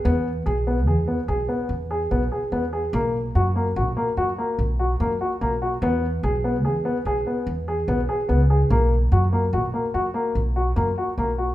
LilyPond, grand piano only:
\new Staff \with { instrumentName = "Grand piano" } { \time 7/4 \key e \lydian \tempo 4 = 146 b4 gis'8 b8 gis'8 b8 gis'8 b4 gis'8 b8 gis'8 b8 gis'8 | ais4 fis'8 ais8 fis'8 ais8 fis'8 ais4 fis'8 ais8 fis'8 ais8 fis'8 | b4 gis'8 b8 gis'8 b8 gis'8 b4 gis'8 b8 gis'8 b8 gis'8 | ais4 fis'8 ais8 fis'8 ais8 fis'8 ais4 fis'8 ais8 fis'8 ais8 fis'8 | }